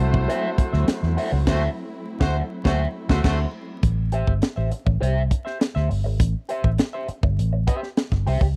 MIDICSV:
0, 0, Header, 1, 8, 480
1, 0, Start_track
1, 0, Tempo, 591133
1, 1194, Time_signature, 4, 2, 24, 8
1, 6952, End_track
2, 0, Start_track
2, 0, Title_t, "Clean electric guitar"
2, 0, Program_c, 0, 27
2, 226, Note_on_c, 0, 66, 80
2, 231, Note_on_c, 0, 72, 85
2, 238, Note_on_c, 0, 76, 100
2, 388, Note_off_c, 0, 66, 0
2, 390, Note_off_c, 0, 72, 0
2, 394, Note_off_c, 0, 76, 0
2, 589, Note_on_c, 0, 76, 59
2, 596, Note_on_c, 0, 72, 58
2, 602, Note_on_c, 0, 66, 49
2, 715, Note_off_c, 0, 76, 0
2, 718, Note_off_c, 0, 72, 0
2, 722, Note_off_c, 0, 66, 0
2, 949, Note_on_c, 0, 66, 84
2, 954, Note_on_c, 0, 72, 97
2, 960, Note_on_c, 0, 76, 90
2, 1064, Note_off_c, 0, 76, 0
2, 1072, Note_off_c, 0, 72, 0
2, 1109, Note_off_c, 0, 66, 0
2, 1193, Note_on_c, 0, 66, 106
2, 1198, Note_on_c, 0, 72, 110
2, 1205, Note_on_c, 0, 76, 113
2, 1356, Note_off_c, 0, 66, 0
2, 1360, Note_off_c, 0, 72, 0
2, 1364, Note_off_c, 0, 76, 0
2, 1791, Note_on_c, 0, 76, 79
2, 1797, Note_on_c, 0, 72, 82
2, 1804, Note_on_c, 0, 66, 92
2, 1955, Note_off_c, 0, 76, 0
2, 1959, Note_off_c, 0, 72, 0
2, 1963, Note_off_c, 0, 66, 0
2, 2152, Note_on_c, 0, 66, 107
2, 2159, Note_on_c, 0, 72, 112
2, 2167, Note_on_c, 0, 76, 110
2, 2316, Note_off_c, 0, 66, 0
2, 2320, Note_off_c, 0, 72, 0
2, 2324, Note_off_c, 0, 76, 0
2, 2512, Note_on_c, 0, 76, 90
2, 2519, Note_on_c, 0, 72, 90
2, 2525, Note_on_c, 0, 66, 95
2, 2615, Note_off_c, 0, 76, 0
2, 2619, Note_off_c, 0, 72, 0
2, 2622, Note_off_c, 0, 66, 0
2, 2631, Note_on_c, 0, 76, 93
2, 2637, Note_on_c, 0, 72, 90
2, 2641, Note_on_c, 0, 66, 92
2, 2795, Note_off_c, 0, 76, 0
2, 2799, Note_off_c, 0, 72, 0
2, 2801, Note_off_c, 0, 66, 0
2, 3348, Note_on_c, 0, 67, 80
2, 3356, Note_on_c, 0, 72, 86
2, 3362, Note_on_c, 0, 76, 81
2, 3509, Note_off_c, 0, 67, 0
2, 3513, Note_off_c, 0, 72, 0
2, 3515, Note_off_c, 0, 76, 0
2, 3704, Note_on_c, 0, 76, 55
2, 3713, Note_on_c, 0, 72, 71
2, 3718, Note_on_c, 0, 67, 54
2, 3816, Note_off_c, 0, 67, 0
2, 3820, Note_off_c, 0, 72, 0
2, 3824, Note_off_c, 0, 76, 0
2, 4064, Note_on_c, 0, 67, 87
2, 4069, Note_on_c, 0, 72, 88
2, 4077, Note_on_c, 0, 76, 95
2, 4227, Note_off_c, 0, 67, 0
2, 4229, Note_off_c, 0, 72, 0
2, 4233, Note_off_c, 0, 76, 0
2, 4423, Note_on_c, 0, 76, 64
2, 4429, Note_on_c, 0, 72, 50
2, 4437, Note_on_c, 0, 67, 50
2, 4535, Note_off_c, 0, 67, 0
2, 4538, Note_off_c, 0, 72, 0
2, 4543, Note_off_c, 0, 76, 0
2, 4668, Note_on_c, 0, 76, 83
2, 4677, Note_on_c, 0, 72, 63
2, 4679, Note_on_c, 0, 67, 55
2, 4776, Note_off_c, 0, 67, 0
2, 4782, Note_off_c, 0, 72, 0
2, 4786, Note_off_c, 0, 76, 0
2, 5268, Note_on_c, 0, 67, 74
2, 5274, Note_on_c, 0, 72, 84
2, 5282, Note_on_c, 0, 76, 90
2, 5429, Note_off_c, 0, 67, 0
2, 5432, Note_off_c, 0, 72, 0
2, 5436, Note_off_c, 0, 76, 0
2, 5628, Note_on_c, 0, 76, 74
2, 5636, Note_on_c, 0, 72, 77
2, 5642, Note_on_c, 0, 67, 57
2, 5741, Note_off_c, 0, 67, 0
2, 5747, Note_off_c, 0, 72, 0
2, 5751, Note_off_c, 0, 76, 0
2, 6229, Note_on_c, 0, 67, 90
2, 6236, Note_on_c, 0, 72, 88
2, 6241, Note_on_c, 0, 76, 88
2, 6340, Note_off_c, 0, 76, 0
2, 6351, Note_off_c, 0, 72, 0
2, 6395, Note_off_c, 0, 67, 0
2, 6711, Note_on_c, 0, 67, 85
2, 6718, Note_on_c, 0, 72, 99
2, 6723, Note_on_c, 0, 76, 86
2, 6824, Note_off_c, 0, 76, 0
2, 6833, Note_off_c, 0, 72, 0
2, 6872, Note_off_c, 0, 67, 0
2, 6952, End_track
3, 0, Start_track
3, 0, Title_t, "Horn section"
3, 0, Program_c, 1, 61
3, 0, Note_on_c, 1, 57, 95
3, 0, Note_on_c, 1, 66, 82
3, 0, Note_on_c, 1, 72, 106
3, 1161, Note_off_c, 1, 57, 0
3, 1161, Note_off_c, 1, 66, 0
3, 1163, Note_off_c, 1, 72, 0
3, 1196, Note_on_c, 1, 66, 105
3, 1200, Note_on_c, 1, 72, 101
3, 1201, Note_on_c, 1, 57, 107
3, 1318, Note_off_c, 1, 66, 0
3, 1320, Note_off_c, 1, 72, 0
3, 1321, Note_off_c, 1, 57, 0
3, 1787, Note_on_c, 1, 66, 93
3, 1789, Note_on_c, 1, 57, 86
3, 1789, Note_on_c, 1, 72, 106
3, 1912, Note_off_c, 1, 66, 0
3, 1913, Note_off_c, 1, 57, 0
3, 1913, Note_off_c, 1, 72, 0
3, 2147, Note_on_c, 1, 66, 101
3, 2149, Note_on_c, 1, 72, 101
3, 2150, Note_on_c, 1, 57, 90
3, 2272, Note_off_c, 1, 66, 0
3, 2273, Note_off_c, 1, 72, 0
3, 2274, Note_off_c, 1, 57, 0
3, 2510, Note_on_c, 1, 66, 107
3, 2510, Note_on_c, 1, 72, 105
3, 2511, Note_on_c, 1, 57, 111
3, 2588, Note_off_c, 1, 57, 0
3, 2588, Note_off_c, 1, 66, 0
3, 2588, Note_off_c, 1, 72, 0
3, 2626, Note_on_c, 1, 57, 98
3, 2626, Note_on_c, 1, 66, 105
3, 2630, Note_on_c, 1, 72, 108
3, 2751, Note_off_c, 1, 57, 0
3, 2751, Note_off_c, 1, 66, 0
3, 2754, Note_off_c, 1, 72, 0
3, 6952, End_track
4, 0, Start_track
4, 0, Title_t, "String section"
4, 0, Program_c, 2, 48
4, 0, Note_on_c, 2, 54, 81
4, 0, Note_on_c, 2, 57, 72
4, 0, Note_on_c, 2, 60, 63
4, 0, Note_on_c, 2, 64, 87
4, 3080, Note_off_c, 2, 54, 0
4, 3080, Note_off_c, 2, 64, 0
4, 3081, Note_off_c, 2, 57, 0
4, 3081, Note_off_c, 2, 60, 0
4, 6952, End_track
5, 0, Start_track
5, 0, Title_t, "Fingered electric bass"
5, 0, Program_c, 3, 33
5, 0, Note_on_c, 3, 36, 90
5, 209, Note_off_c, 3, 36, 0
5, 596, Note_on_c, 3, 38, 92
5, 702, Note_off_c, 3, 38, 0
5, 834, Note_on_c, 3, 40, 88
5, 941, Note_off_c, 3, 40, 0
5, 1074, Note_on_c, 3, 37, 93
5, 1181, Note_off_c, 3, 37, 0
5, 1191, Note_on_c, 3, 38, 94
5, 1355, Note_off_c, 3, 38, 0
5, 1792, Note_on_c, 3, 38, 88
5, 1956, Note_off_c, 3, 38, 0
5, 2152, Note_on_c, 3, 38, 106
5, 2316, Note_off_c, 3, 38, 0
5, 2513, Note_on_c, 3, 38, 101
5, 2615, Note_off_c, 3, 38, 0
5, 2632, Note_on_c, 3, 38, 104
5, 2796, Note_off_c, 3, 38, 0
5, 3110, Note_on_c, 3, 33, 89
5, 3433, Note_off_c, 3, 33, 0
5, 3471, Note_on_c, 3, 31, 84
5, 3579, Note_off_c, 3, 31, 0
5, 3714, Note_on_c, 3, 33, 82
5, 3821, Note_off_c, 3, 33, 0
5, 3951, Note_on_c, 3, 33, 88
5, 4059, Note_off_c, 3, 33, 0
5, 4075, Note_on_c, 3, 36, 82
5, 4289, Note_off_c, 3, 36, 0
5, 4676, Note_on_c, 3, 38, 81
5, 4782, Note_off_c, 3, 38, 0
5, 4794, Note_on_c, 3, 31, 84
5, 4916, Note_off_c, 3, 31, 0
5, 4916, Note_on_c, 3, 32, 78
5, 5023, Note_off_c, 3, 32, 0
5, 5034, Note_on_c, 3, 33, 101
5, 5141, Note_off_c, 3, 33, 0
5, 5393, Note_on_c, 3, 33, 87
5, 5501, Note_off_c, 3, 33, 0
5, 5872, Note_on_c, 3, 31, 94
5, 5981, Note_off_c, 3, 31, 0
5, 5998, Note_on_c, 3, 33, 81
5, 6211, Note_off_c, 3, 33, 0
5, 6591, Note_on_c, 3, 31, 87
5, 6700, Note_off_c, 3, 31, 0
5, 6717, Note_on_c, 3, 36, 80
5, 6824, Note_off_c, 3, 36, 0
5, 6829, Note_on_c, 3, 37, 85
5, 6939, Note_off_c, 3, 37, 0
5, 6952, End_track
6, 0, Start_track
6, 0, Title_t, "Muted clean electric guitar strokes"
6, 110, Note_on_c, 9, 29, 42
6, 191, Note_off_c, 9, 29, 0
6, 469, Note_on_c, 9, 29, 49
6, 550, Note_off_c, 9, 29, 0
6, 834, Note_on_c, 9, 29, 40
6, 915, Note_off_c, 9, 29, 0
6, 1074, Note_on_c, 9, 29, 44
6, 1155, Note_off_c, 9, 29, 0
6, 3589, Note_on_c, 9, 29, 40
6, 3671, Note_off_c, 9, 29, 0
6, 3826, Note_on_c, 9, 29, 45
6, 3907, Note_off_c, 9, 29, 0
6, 3945, Note_on_c, 9, 29, 45
6, 4026, Note_off_c, 9, 29, 0
6, 4307, Note_on_c, 9, 29, 38
6, 4389, Note_off_c, 9, 29, 0
6, 4544, Note_on_c, 9, 29, 40
6, 4625, Note_off_c, 9, 29, 0
6, 4786, Note_on_c, 9, 29, 40
6, 4867, Note_off_c, 9, 29, 0
6, 4906, Note_on_c, 9, 29, 48
6, 4987, Note_off_c, 9, 29, 0
6, 5509, Note_on_c, 9, 29, 49
6, 5590, Note_off_c, 9, 29, 0
6, 5751, Note_on_c, 9, 29, 39
6, 5832, Note_off_c, 9, 29, 0
6, 5872, Note_on_c, 9, 29, 50
6, 5954, Note_off_c, 9, 29, 0
6, 6112, Note_on_c, 9, 29, 47
6, 6193, Note_off_c, 9, 29, 0
6, 6350, Note_on_c, 9, 29, 55
6, 6431, Note_off_c, 9, 29, 0
6, 6593, Note_on_c, 9, 29, 43
6, 6674, Note_off_c, 9, 29, 0
6, 6834, Note_on_c, 9, 29, 45
6, 6915, Note_off_c, 9, 29, 0
6, 6952, End_track
7, 0, Start_track
7, 0, Title_t, "Muted fingered electric bass strokes"
7, 473, Note_on_c, 9, 29, 49
7, 554, Note_off_c, 9, 29, 0
7, 3595, Note_on_c, 9, 29, 41
7, 3676, Note_off_c, 9, 29, 0
7, 5753, Note_on_c, 9, 29, 43
7, 5834, Note_off_c, 9, 29, 0
7, 6952, End_track
8, 0, Start_track
8, 0, Title_t, "Drums"
8, 112, Note_on_c, 9, 36, 107
8, 194, Note_off_c, 9, 36, 0
8, 241, Note_on_c, 9, 42, 80
8, 322, Note_off_c, 9, 42, 0
8, 473, Note_on_c, 9, 36, 99
8, 473, Note_on_c, 9, 42, 83
8, 554, Note_off_c, 9, 36, 0
8, 554, Note_off_c, 9, 42, 0
8, 594, Note_on_c, 9, 38, 33
8, 676, Note_off_c, 9, 38, 0
8, 713, Note_on_c, 9, 42, 91
8, 715, Note_on_c, 9, 38, 105
8, 794, Note_off_c, 9, 42, 0
8, 796, Note_off_c, 9, 38, 0
8, 835, Note_on_c, 9, 38, 39
8, 916, Note_off_c, 9, 38, 0
8, 957, Note_on_c, 9, 46, 81
8, 1038, Note_off_c, 9, 46, 0
8, 1192, Note_on_c, 9, 49, 82
8, 1193, Note_on_c, 9, 36, 102
8, 1194, Note_on_c, 9, 38, 106
8, 1273, Note_off_c, 9, 49, 0
8, 1274, Note_off_c, 9, 36, 0
8, 1275, Note_off_c, 9, 38, 0
8, 1792, Note_on_c, 9, 36, 120
8, 1793, Note_on_c, 9, 38, 114
8, 1874, Note_off_c, 9, 36, 0
8, 1875, Note_off_c, 9, 38, 0
8, 2152, Note_on_c, 9, 36, 102
8, 2156, Note_on_c, 9, 38, 99
8, 2234, Note_off_c, 9, 36, 0
8, 2237, Note_off_c, 9, 38, 0
8, 2512, Note_on_c, 9, 36, 97
8, 2516, Note_on_c, 9, 38, 109
8, 2593, Note_off_c, 9, 36, 0
8, 2598, Note_off_c, 9, 38, 0
8, 2632, Note_on_c, 9, 36, 99
8, 2633, Note_on_c, 9, 49, 75
8, 2635, Note_on_c, 9, 38, 96
8, 2713, Note_off_c, 9, 36, 0
8, 2714, Note_off_c, 9, 49, 0
8, 2717, Note_off_c, 9, 38, 0
8, 3109, Note_on_c, 9, 42, 91
8, 3111, Note_on_c, 9, 36, 101
8, 3190, Note_off_c, 9, 42, 0
8, 3192, Note_off_c, 9, 36, 0
8, 3345, Note_on_c, 9, 42, 61
8, 3427, Note_off_c, 9, 42, 0
8, 3471, Note_on_c, 9, 36, 77
8, 3552, Note_off_c, 9, 36, 0
8, 3588, Note_on_c, 9, 42, 83
8, 3597, Note_on_c, 9, 38, 109
8, 3670, Note_off_c, 9, 42, 0
8, 3678, Note_off_c, 9, 38, 0
8, 3829, Note_on_c, 9, 42, 69
8, 3910, Note_off_c, 9, 42, 0
8, 3950, Note_on_c, 9, 36, 95
8, 4032, Note_off_c, 9, 36, 0
8, 4083, Note_on_c, 9, 42, 77
8, 4164, Note_off_c, 9, 42, 0
8, 4312, Note_on_c, 9, 36, 86
8, 4314, Note_on_c, 9, 42, 72
8, 4393, Note_off_c, 9, 36, 0
8, 4395, Note_off_c, 9, 42, 0
8, 4437, Note_on_c, 9, 38, 31
8, 4518, Note_off_c, 9, 38, 0
8, 4556, Note_on_c, 9, 42, 80
8, 4558, Note_on_c, 9, 38, 100
8, 4637, Note_off_c, 9, 42, 0
8, 4639, Note_off_c, 9, 38, 0
8, 4678, Note_on_c, 9, 38, 37
8, 4759, Note_off_c, 9, 38, 0
8, 4798, Note_on_c, 9, 46, 71
8, 4879, Note_off_c, 9, 46, 0
8, 5033, Note_on_c, 9, 36, 110
8, 5033, Note_on_c, 9, 42, 92
8, 5114, Note_off_c, 9, 36, 0
8, 5114, Note_off_c, 9, 42, 0
8, 5271, Note_on_c, 9, 42, 57
8, 5352, Note_off_c, 9, 42, 0
8, 5392, Note_on_c, 9, 36, 86
8, 5473, Note_off_c, 9, 36, 0
8, 5508, Note_on_c, 9, 42, 80
8, 5516, Note_on_c, 9, 38, 110
8, 5589, Note_off_c, 9, 42, 0
8, 5598, Note_off_c, 9, 38, 0
8, 5752, Note_on_c, 9, 42, 61
8, 5833, Note_off_c, 9, 42, 0
8, 5872, Note_on_c, 9, 36, 101
8, 5953, Note_off_c, 9, 36, 0
8, 6001, Note_on_c, 9, 42, 81
8, 6083, Note_off_c, 9, 42, 0
8, 6233, Note_on_c, 9, 36, 92
8, 6234, Note_on_c, 9, 42, 75
8, 6314, Note_off_c, 9, 36, 0
8, 6315, Note_off_c, 9, 42, 0
8, 6358, Note_on_c, 9, 38, 36
8, 6439, Note_off_c, 9, 38, 0
8, 6473, Note_on_c, 9, 42, 73
8, 6475, Note_on_c, 9, 38, 103
8, 6555, Note_off_c, 9, 42, 0
8, 6556, Note_off_c, 9, 38, 0
8, 6591, Note_on_c, 9, 36, 89
8, 6594, Note_on_c, 9, 38, 39
8, 6673, Note_off_c, 9, 36, 0
8, 6675, Note_off_c, 9, 38, 0
8, 6716, Note_on_c, 9, 46, 79
8, 6798, Note_off_c, 9, 46, 0
8, 6829, Note_on_c, 9, 36, 89
8, 6910, Note_off_c, 9, 36, 0
8, 6952, End_track
0, 0, End_of_file